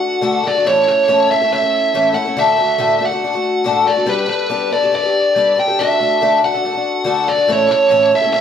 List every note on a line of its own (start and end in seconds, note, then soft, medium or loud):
0.00 0.22 D4 soft
0.00 0.22 F#4 soft
0.00 0.22 A4 medium
0.00 0.49 F#5 loud
0.21 0.44 D3 medium
0.21 0.42 A3 medium
0.21 0.43 D4 medium
0.21 0.45 F#4 medium
0.21 0.45 A4 loud
0.43 0.55 A3 medium
0.43 0.56 D4 medium
0.43 0.56 F#4 medium
0.43 0.53 A4 medium
0.48 0.67 D5 medium
0.55 0.67 D4 soft
0.55 0.66 F#4 soft
0.55 0.66 A4 medium
0.65 0.87 A2 medium
0.65 0.88 E3 medium
0.65 0.86 A3 medium
0.65 0.87 C#4 medium
0.65 0.88 E4 medium
0.65 0.89 A4 medium
0.65 0.88 C#5 medium
0.87 1.07 A3 medium
0.87 1.08 C#4 medium
0.87 1.08 E4 medium
0.87 1.08 A4 medium
0.87 1.31 C#5 loud
1.08 1.30 A2 medium
1.08 1.30 E3 medium
1.08 1.27 A3 medium
1.08 1.30 C#4 medium
1.08 1.30 E4 medium
1.08 1.31 A4 medium
1.29 1.41 A3 medium
1.29 1.42 C#4 medium
1.29 1.40 E4 medium
1.29 1.40 A4 medium
1.29 1.52 E5 medium
1.41 1.50 A3 soft
1.41 1.52 C#4 medium
1.41 1.52 E4 medium
1.41 1.52 A4 medium
1.51 1.62 A3 medium
1.51 1.63 C#4 medium
1.51 1.62 E4 medium
1.51 1.60 A4 medium
1.51 2.19 E5 loud
1.62 1.94 A3 soft
1.62 1.94 C#4 medium
1.62 1.94 E4 medium
1.62 1.94 A4 medium
1.94 2.16 A2 medium
1.94 2.16 E3 medium
1.94 2.12 A3 medium
1.94 2.13 C#4 medium
1.94 2.14 E4 medium
1.94 2.15 A4 medium
2.13 2.26 A3 medium
2.13 2.26 C#4 medium
2.13 2.24 E4 medium
2.13 2.23 A4 medium
2.13 2.37 F#5 loud
2.25 2.36 A3 soft
2.25 2.37 C#4 soft
2.25 2.37 E4 medium
2.25 2.36 A4 medium
2.37 2.58 A2 medium
2.37 2.58 D3 medium
2.37 2.56 A3 medium
2.37 2.57 D4 medium
2.37 2.59 F#4 medium
2.37 2.59 A4 medium
2.37 3.04 E5 loud
2.57 2.77 A3 medium
2.57 2.78 D4 medium
2.57 2.79 F#4 medium
2.57 2.79 A4 medium
2.78 3.00 A2 medium
2.78 3.01 D3 medium
2.78 2.98 A3 medium
2.78 2.99 D4 medium
2.78 3.00 F#4 medium
2.78 3.00 A4 medium
2.99 3.11 A3 medium
2.99 3.12 D4 medium
2.99 3.11 F#4 medium
2.99 3.10 A4 medium
3.06 3.91 F#5 medium
3.11 3.21 A3 soft
3.11 3.23 D4 soft
3.11 3.23 F#4 medium
3.11 3.22 A4 medium
3.22 3.33 A3 medium
3.22 3.34 D4 medium
3.22 3.33 F#4 medium
3.22 3.32 A4 medium
3.33 3.64 A3 soft
3.33 3.65 D4 soft
3.33 3.65 F#4 medium
3.33 3.65 A4 medium
3.64 3.86 A2 medium
3.64 3.87 D3 medium
3.64 3.84 A3 medium
3.64 3.87 D4 medium
3.64 3.87 F#4 medium
3.64 3.88 A4 medium
3.86 3.97 A3 medium
3.86 3.96 D4 medium
3.86 3.95 F#4 medium
3.86 4.09 D5 medium
3.90 3.95 A4 medium
3.96 4.05 A3 soft
3.96 4.05 D4 medium
3.96 4.07 F#4 medium
3.96 4.06 A4 medium
4.06 4.28 G3 medium
4.06 4.25 B3 medium
4.06 4.26 D4 medium
4.06 4.27 G4 medium
4.06 4.27 A4 medium
4.06 4.28 B4 medium
4.26 4.49 B3 medium
4.26 4.49 D4 medium
4.26 4.50 G4 medium
4.26 4.50 A4 medium
4.26 4.69 B4 medium
4.49 4.71 G3 medium
4.49 4.70 B3 medium
4.49 4.70 D4 medium
4.49 4.72 G4 medium
4.49 4.72 A4 medium
4.71 4.82 B3 medium
4.71 4.82 D4 medium
4.71 4.83 G4 medium
4.71 4.81 A4 medium
4.71 4.94 D5 medium
4.82 4.92 D4 soft
4.82 4.93 G4 medium
4.82 4.93 A4 medium
4.92 5.03 B3 medium
4.92 5.04 D4 medium
4.92 5.04 G4 medium
4.92 5.02 A4 medium
4.92 5.60 D5 medium
5.03 5.35 D4 soft
5.03 5.36 G4 soft
5.03 5.35 A4 medium
5.36 5.57 G3 medium
5.36 5.54 B3 medium
5.36 5.56 D4 medium
5.36 5.57 G4 medium
5.36 5.57 A4 medium
5.55 5.67 B3 medium
5.55 5.68 D4 medium
5.55 5.68 G4 medium
5.55 5.66 A4 medium
5.60 5.80 G5 medium
5.68 5.79 D4 soft
5.68 5.79 G4 soft
5.68 5.78 A4 medium
5.79 6.00 D3 medium
5.79 5.99 A3 medium
5.79 6.00 D4 medium
5.79 6.01 F#4 medium
5.79 6.01 A4 medium
5.79 6.39 E5 medium
6.00 6.21 A3 medium
6.00 6.21 D4 medium
6.00 6.21 F#4 medium
6.00 6.21 A4 medium
6.21 6.42 D3 medium
6.21 6.40 A3 medium
6.21 6.42 D4 medium
6.21 6.43 F#4 medium
6.21 6.43 A4 medium
6.42 6.53 A3 medium
6.42 6.53 D4 medium
6.42 6.54 F#4 medium
6.42 6.53 A4 medium
6.42 7.31 F#5 medium
6.54 6.64 D4 soft
6.54 6.64 F#4 soft
6.54 6.64 A4 medium
6.63 6.74 A3 medium
6.63 6.75 D4 medium
6.63 6.74 F#4 medium
6.63 6.72 A4 medium
6.73 7.05 F#4 medium
6.73 7.06 A4 medium
6.77 7.04 D4 soft
7.04 7.27 D3 medium
7.04 7.26 A3 medium
7.04 7.26 D4 medium
7.04 7.27 F#4 loud
7.04 7.28 A4 loud
7.27 7.38 A3 medium
7.27 7.38 D4 medium
7.27 7.37 F#4 medium
7.27 7.35 A4 medium
7.27 7.50 D5 medium
7.36 7.49 D4 soft
7.36 7.49 F#4 soft
7.36 7.48 A4 medium
7.48 7.70 A2 medium
7.48 7.70 E3 medium
7.48 7.67 A3 medium
7.48 7.68 C#4 medium
7.48 7.70 E4 medium
7.48 7.70 A4 medium
7.52 7.71 C#5 medium
7.68 7.90 A3 medium
7.68 7.90 C#4 medium
7.68 7.91 E4 medium
7.68 7.90 A4 medium
7.68 8.11 C#5 medium
7.89 8.12 A2 medium
7.89 8.12 E3 medium
7.89 8.10 A3 medium
7.89 8.11 C#4 medium
7.89 8.12 E4 medium
7.89 8.13 A4 medium
8.11 8.23 A3 medium
8.11 8.23 C#4 medium
8.11 8.22 E4 medium
8.11 8.20 A4 medium
8.15 8.32 E5 medium
8.21 8.33 C#4 medium
8.21 8.33 E4 medium
8.21 8.33 A4 medium
8.26 8.31 A3 soft
8.32 8.41 A3 medium
8.32 8.41 C#4 medium
8.32 8.41 E4 medium
8.32 8.41 A4 medium
8.32 8.41 E5 medium